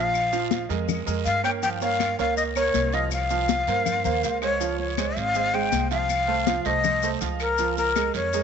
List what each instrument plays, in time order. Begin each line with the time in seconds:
Already playing: upright bass A#1, upright piano F3 F4 F5, flute F5
0.14 high conga, long guiro, claves, maracas
0.33 upright piano F3 F4 F5, high conga, maracas
0.51 high conga, short guiro, maracas
0.69 upright bass F2, upright piano G#3 G#4 A#4, high conga, short guiro, maracas
0.89 high conga, low conga, long guiro, claves, maracas
1.06 upright bass F2, upright piano G#3 G#4 A#4, high conga, maracas
1.25 upright bass G2, flute F5, high conga, short guiro, maracas
1.43 upright piano A#3 A#4 C#5, flute G5, short guiro, claves, maracas
1.63 upright piano F3 F4 F5, flute G5, high conga, long guiro, maracas
1.81 upright piano A#3 A#4 C#5, flute F5, high conga, maracas
2.00 high conga, short guiro, claves, maracas
2.19 upright bass C#2, upright piano A#3 A#4 C#5, flute F5, short guiro, maracas
2.37 flute D#5, high conga, long guiro, maracas
2.56 upright piano A#3 A#4 C#5, flute C#5, high conga, claves, maracas
2.74 upright bass C2, high conga, short guiro, maracas
2.93 upright piano F3 F4 F5, flute D#5, short guiro, maracas
3.11 flute F5, high conga, long guiro, claves, maracas
3.30 upright piano F3 F4 F5, high conga, maracas
3.48 high conga, short guiro, maracas
3.67 upright bass G2, upright piano A#3 A#4 C5, high conga, short guiro, maracas
3.86 high conga, low conga, long guiro, claves, maracas
4.05 upright bass D#2, upright piano A#3 A#4 C5, high conga, low conga, maracas
4.23 upright bass C#2, high conga, short guiro, maracas
4.42 upright piano G#3 G#4 C5, flute C#5, short guiro, claves, maracas
4.60 upright piano F3 F4 F5, high conga, long guiro, maracas
4.79 flute C#5, high conga
4.97 upright piano G#3 G#4 C5, high conga, short guiro, claves, maracas
5.17 upright bass G#1, flute F5, short guiro, maracas
5.35 upright piano G#3 G#4 C5, high conga, long guiro, maracas
5.54 upright piano G#3 G#4 C5, flute G5, high conga, claves
5.72 upright bass C2, high conga, short guiro, maracas
5.91 upright piano F3 F4 F5, flute F5, short guiro, maracas
6.09 high conga, long guiro, claves, maracas
6.28 upright piano A3 A4 C5, high conga
6.46 upright piano F3 F4 F5, high conga, short guiro, maracas
6.65 upright bass C2, upright piano A3 A4 C5, flute D#5, high conga, short guiro, maracas
6.84 high conga, low conga, long guiro, claves, maracas
7.03 upright piano A3 A4 C5, high conga, maracas
7.21 upright bass C#2, upright piano F3 F4 F5, high conga, short guiro, maracas
7.40 flute A#4, short guiro, claves, maracas
7.58 upright piano F3 F4 F5, high conga, long guiro, maracas
7.77 flute A#4, high conga, maracas
7.96 upright piano G#3 G#4 A#4, high conga, short guiro, claves, maracas
8.14 upright bass F2, flute C#5, short guiro, maracas
8.33 upright piano G#3 G#4 A#4, high conga, long guiro, maracas